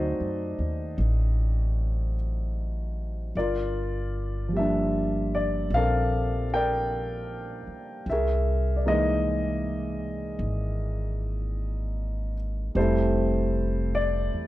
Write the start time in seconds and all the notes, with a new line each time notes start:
Already playing: D2 F#3 A3 C4 D#4 F#4 A4 C5 D5 D#5
0.20 F#2
0.59 D#2
0.98 A1
3.35 G1 F4 A#4 D5
4.48 F3
4.53 G3 A#3
4.57 D4 E5
5.35 D5
5.70 A#1 C4 F5
5.76 A4 A#4
6.54 A#4 D5 G5
7.67 muted upright bass stroke
8.06 C2 E5
8.12 G#4 A#4
8.76 D5
8.86 E3 G#3 A#3 D#4 G#4 A#4 D#5
10.39 G#1
12.75 F1 G3 A3 C4 E4 C5
12.79 A4
13.95 D5
14.33 E2